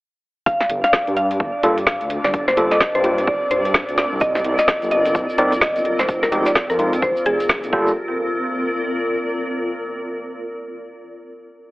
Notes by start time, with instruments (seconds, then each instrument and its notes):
0.46 ambient pad C4, analog synth pad D4 D5, synth pluck F5, kick, closed hi-hat
0.60 snare
0.70 detuned saw bass G1, closed hi-hat
0.84 synth pluck F5, snare, closed hi-hat
0.93 ambient pad F4, kick, snare
1.07 detuned saw bass G2, closed hi-hat
1.17 synth pluck F5, closed hi-hat
1.22 ambient pad A#4
1.31 closed hi-hat
1.40 detuned saw bass G1, kick
1.63 detuned saw bass G2, tine electric piano G3 A#3 F4 A4, closed hi-hat
1.68 ambient pad D5
1.78 closed hi-hat
1.87 synth pluck F5, kick, snare
2.01 detuned saw bass D2, closed hi-hat
2.10 closed hi-hat
2.24 detuned saw bass G1, synth pluck D5, snare
2.34 kick, closed hi-hat
2.48 synth pluck C5, snare
2.57 detuned saw bass G1, tine electric piano G3 A#3 F4 A4, closed hi-hat
2.71 synth pluck D#5, snare, closed hi-hat
2.81 kick, snare
2.95 detuned saw bass G2, synth pluck C5, closed hi-hat
3.04 tine electric piano G3 A#3 F4 G4, closed hi-hat
3.18 closed hi-hat
3.27 detuned saw bass G1, synth pluck D5, kick
3.51 detuned saw bass G2, synth pluck C5, closed hi-hat
3.65 closed hi-hat
3.74 kick, snare
3.89 detuned saw bass D2, closed hi-hat
3.98 snare, closed hi-hat
4.12 detuned saw bass C2
4.21 synth pluck D#5, kick, closed hi-hat, shaker
4.35 snare, shaker
4.44 detuned saw bass C2, closed hi-hat
4.59 synth pluck D#5, snare, closed hi-hat, shaker
4.68 kick, snare, shaker
4.82 detuned saw bass G1, closed hi-hat, shaker
4.91 synth pluck D#5, closed hi-hat
5.05 closed hi-hat, shaker
5.15 detuned saw bass C2, kick, shaker
5.29 shaker
5.38 detuned saw bass G1, tine electric piano C4 D#4 A#4 D5, closed hi-hat
5.52 closed hi-hat, shaker
5.61 synth pluck D#5, kick, snare, shaker
5.76 detuned saw bass G1, closed hi-hat, shaker
5.85 closed hi-hat
5.99 detuned saw bass F1, synth pluck C5, snare, shaker
6.08 kick, closed hi-hat, shaker
6.23 synth pluck A#4, snare, shaker
6.32 detuned saw bass F1, tine electric piano F3 G#3 D#4 G4, closed hi-hat
6.46 synth pluck D5, snare, closed hi-hat, shaker
6.55 kick, snare, shaker
6.70 detuned saw bass F2, synth pluck A#4, closed hi-hat, shaker
6.79 tine electric piano F3 G#3 D#4 F4, closed hi-hat
6.93 closed hi-hat, shaker
7.02 detuned saw bass F1, synth pluck C5, kick, shaker
7.16 shaker
7.26 detuned saw bass F1, synth pluck G#4, closed hi-hat
7.40 closed hi-hat, shaker
7.49 kick, snare, shaker
7.63 detuned saw bass C2, closed hi-hat, shaker
7.73 detuned saw bass G1, tine electric piano G3 A#3 F4 A4, ambient pad C4, synth pluck G4, kick
7.81 ambient pad F4
7.87 shaker
8.12 ambient pad A#4
8.18 ambient pad D5